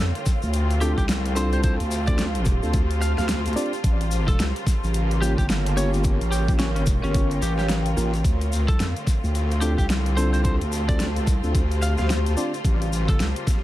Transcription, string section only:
Already playing: D3 A3 C4 F4
3.83 C#3 G3 A#3
8.24 D3 A3 C4 F4
12.65 C#3 G3 A#3

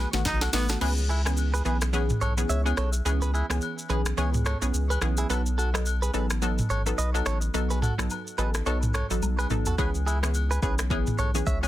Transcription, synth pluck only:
0.13 D#3 A3 B3 F#4
0.53 D#3 A3 B3 F#4
0.81 E3 B3 C#4 G#4
1.25 E3 B3 C#4 G#4
1.65 E3 B3 C#4 G#4
1.93 E3 B3 C#4 G#4
2.37 E3 B3 C#4 G#4
2.65 E3 B3 C#4 G#4
3.05 E3 B3 C#4 G#4
3.50 E3 B3 C#4 G#4
3.89 E3 B3 C#4 G#4
4.17 E3 B3 C#4 G#4
4.62 E3 B3 C#4 G#4
5.01 E3 B3 C#4 G#4
5.30 F#3 B3 D#4 A4
5.74 F#3 B3 D#4 A4
6.14 F#3 B3 D#4 A4
6.42 F#3 B3 D#4 A4
6.86 F#3 B3 D#4 A4
7.14 F#3 B3 D#4 A4
7.54 F#3 B3 D#4 A4
7.98 F#3 B3 D#4 A4
8.38 F#3 B3 D#4 A4
8.66 F#3 B3 D#4 A4
9.10 F#3 B3 D#4 A4
9.50 F#3 B3 D#4 A4
9.78 E3 B3 C#4 G#4
10.23 E3 B3 C#4 G#4
10.62 E3 B3 C#4 G#4
10.91 E3 B3 C#4 G#4
11.35 E3 B3 C#4 G#4
11.63 E3 B3 C#4 G#4

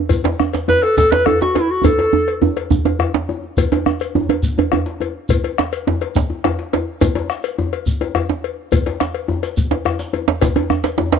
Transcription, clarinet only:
0.69 B4
0.83 A4
0.97 A4
1.11 B4
1.26 A4
1.41 F#4
1.56 E4
1.71 F#4
1.85 A4

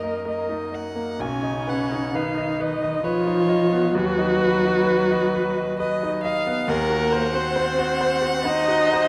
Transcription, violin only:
Already playing: D#5
0.27 D#5
0.74 F#5
1.20 G#5
1.69 F#5
2.15 F5
2.61 D#5
3.04 C#5
3.94 B4
5.79 D#5
6.23 F5
6.69 F#5

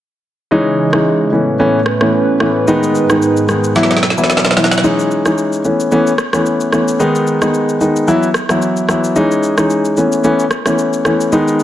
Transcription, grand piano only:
0.51 E3 G#3 C#4 D#4
0.93 E3 G#3 C#4 D#4
1.32 E3 A3 B3 C#4
1.59 E3 A3 B3 C#4
2.01 E3 A3 B3 C#4
2.40 E3 A3 B3 C#4
2.67 D#3 G#3 B3 D#4
3.09 D#3 G#3 B3 D#4
3.48 D#3 G#3 B3 D#4
3.75 E3 F#3 B3 E4
4.17 E3 F#3 B3 E4
4.57 E3 F#3 B3 E4
4.84 E3 G#3 C#4 D#4
5.25 E3 G#3 C#4 D#4
5.64 E3 A3 B3 C#4
5.91 E3 A3 B3 C#4
6.33 E3 A3 B3 C#4
6.72 E3 A3 B3 C#4
6.99 D#3 G#3 B3 D#4
7.42 D#3 G#3 B3 D#4
7.80 D#3 G#3 B3 D#4
8.08 E3 F#3 B3 E4
8.49 E3 F#3 B3 E4
8.89 E3 F#3 B3 E4
9.16 E3 G#3 C#4 D#4
9.58 E3 G#3 C#4 D#4
9.97 E3 A3 B3 C#4
10.24 E3 A3 B3 C#4
10.66 E3 A3 B3 C#4
11.05 E3 A3 B3 C#4
11.32 D#3 G#3 B3 D#4

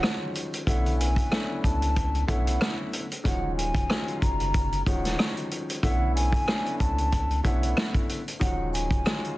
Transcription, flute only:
Already playing: F#5
0.68 F#5
0.98 G#5
1.63 A5
2.28 F#5
3.26 F#5
3.57 G#5
4.21 A#5
4.87 F#5
5.84 F#5
6.15 G#5
6.79 A5
7.45 F#5
8.41 F#5
8.73 G#5

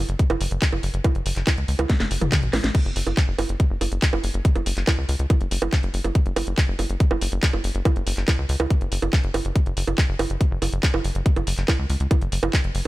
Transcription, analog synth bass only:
0.09 F#1
0.30 F#1
0.41 F#1
0.51 F#1
0.73 F#1
0.83 F#1
0.94 F#1
1.15 F#1
1.26 F#1
1.36 F#1
1.58 C#2
1.68 C#2
1.79 C#2
2.00 F#1
2.11 F#1
2.21 F#1
2.43 A1
2.53 A1
2.64 A1
2.85 F#1
2.96 F#1
3.07 F#1
3.28 F#1
3.39 F#1
3.49 F#1
3.70 F#1
3.81 F#1
3.92 F#1
4.13 F#1
4.24 F#1
4.34 F#1
4.56 F#1
4.66 F#1
4.77 F#1
4.98 C#2
5.09 C#2
5.19 C#2
5.41 F#1
5.51 F#1
5.62 F#1
5.83 F#1
5.94 F#1
6.04 F#1
6.26 F#1
6.36 F#1
6.47 F#1
6.68 F#1
6.79 F#1
6.90 F#1
7.11 F#1
7.21 F#1
7.32 F#1
7.53 F#1
7.64 F#1
7.75 F#1
7.96 F#1
8.07 F#1
8.17 F#1
8.39 C#2
8.49 C#2
8.60 C#2
8.81 F#1
8.92 F#1
9.02 F#1
9.24 F#1
9.34 F#1
9.45 F#1
9.66 F#1
9.77 F#1
9.87 F#1
10.09 F#1
10.19 F#1
10.30 F#1
10.51 F#1
10.62 F#1
10.73 F#1
10.94 F#1
11.04 F#1
11.15 F#1
11.36 F#1
11.47 F#1
11.58 F#1
11.79 C#2
11.90 C#2
12.00 C#2
12.22 F#1
12.32 F#1
12.43 F#1
12.64 F#1
12.75 F#1

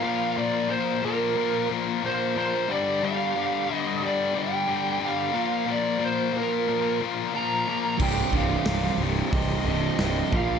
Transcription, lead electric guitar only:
0.03 F5
0.37 D5
0.70 C5
1.05 A#4
2.06 C5
2.38 C5
2.72 D5
3.05 F5
3.76 D#5
4.06 D5
4.39 G5
5.06 F5
5.71 D5
6.04 C5
6.37 A#4
7.36 A#5
8.02 G5
8.37 F5
9.34 D#5
9.67 D#5
10.03 D#5
10.37 F5

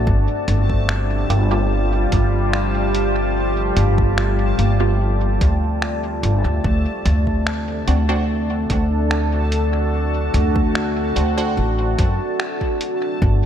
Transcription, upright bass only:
0.07 G1
0.48 G1
1.30 G1
2.12 G1
3.77 G1
4.59 G1
5.41 D2
6.23 G1
6.45 D2
6.64 D2
7.06 D2
7.88 D2
8.70 D2
10.34 D2
11.16 D2
11.57 A1
11.99 F#2
13.22 G1

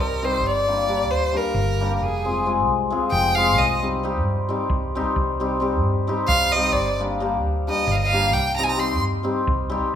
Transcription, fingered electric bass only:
Already playing: C2
0.43 G1
1.08 D2
1.54 G1
2.01 F1
2.65 C2
3.12 F1
3.58 C2
4.22 G2
4.70 C2
5.16 C2
5.82 G2
6.28 C2
6.76 G1
7.40 D2
7.87 G1
8.35 C2
9.00 G2
9.47 C2

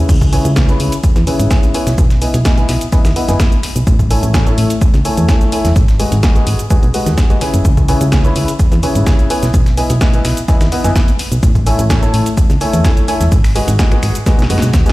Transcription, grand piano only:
Already playing: C#3 E4 B4 C#5 G#5
0.33 C#3 E4 B4 C#5 G#5
0.56 C#3 E4 B4 C#5 G#5
0.69 C#3 E4 B4 C#5 B5
1.27 C#3 E4 B4 C#5 G#5
1.51 C#3 E4 B4 C#5 G#5
1.74 B3 E4 B4 C#5 G#5
2.22 B3 E4 B4 D#5 G#5
2.45 B3 E4 B4 D#5 G#5
2.58 B3 E4 B4 D#5 G#5
2.92 B3 E4 B4 D#5 G#5
3.16 B3 E4 B4 D#5 F#5
3.29 B3 E4 B4 D#5 G#5
4.11 A3 E4 A4 C#5 G#5
4.34 A3 E4 A4 C#5 G#5
4.47 A3 E4 A4 C#5 A5
5.05 A3 E4 A4 C#5 G#5
5.29 A3 E4 A4 C#5 G#5
5.52 E4 A4 C#5 G#5
6.00 G#3 F#4 B4 D#5 G#5
6.23 G#3 F#4 B4 D#5 G#5
6.36 G#3 F#4 B4 D#5 G#5
6.70 G#3 F#4 B4 D#5 G#5
6.94 G#3 F#4 B4 D#5 F#5
7.30 G#3 F#4 B4 D#5 G#5
7.41 C#3 E4 B4 C#5 G#5
7.89 C#3 E4 B4 C#5 G#5
8.12 C#3 E4 B4 C#5 G#5
8.25 C#3 E4 B4 C#5 B5
8.83 C#3 E4 B4 C#5 G#5
9.07 C#3 E4 B4 C#5 G#5
9.30 B3 E4 B4 C#5 G#5
9.77 B3 E4 B4 D#5 G#5
10.01 B3 E4 B4 D#5 G#5
10.14 B3 E4 B4 D#5 G#5
10.48 B3 E4 B4 D#5 G#5
10.72 B3 E4 B4 D#5 F#5
10.84 B3 E4 B4 D#5 G#5
11.66 A3 E4 A4 C#5 G#5
11.90 A3 E4 A4 C#5 G#5
12.02 A3 E4 A4 C#5 A5
12.61 A3 E4 A4 C#5 G#5
12.85 A3 E4 A4 C#5 G#5
13.08 E4 A4 C#5 G#5
13.55 G#3 F#4 B4 D#5 G#5
13.79 G#3 F#4 B4 D#5 G#5
13.91 G#3 F#4 B4 D#5 G#5
14.26 G#3 F#4 B4 D#5 G#5
14.50 G#3 F#4 B4 D#5 F#5
14.86 G#3 F#4 B4 D#5 G#5

